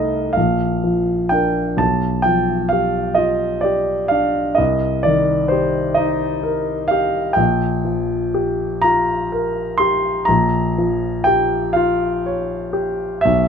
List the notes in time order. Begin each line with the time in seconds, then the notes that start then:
Already playing: C2 A3 D#4 A4 D#5 F5
0.33 A#1 F5
0.84 F3
1.29 D4 A#4 G5
1.77 B1 A5
2.22 F3 G5
2.69 G4 F5
3.14 F4 D#5
3.61 G4 D5
4.08 D4 F5
4.55 C2 D#5
5.03 D#3 D5
5.48 G4 C5
5.94 D#4 D#5
6.43 A#4
6.88 G4 F5
7.33 A#1 G5
7.85 F3
8.34 G4
8.82 F4 A#5
9.32 A#4
9.78 G4 C6
10.25 A#1 A#5
10.78 F3
11.24 G4 G5
11.73 F4 F5
12.26 C#5
12.73 G4
13.21 B1 E5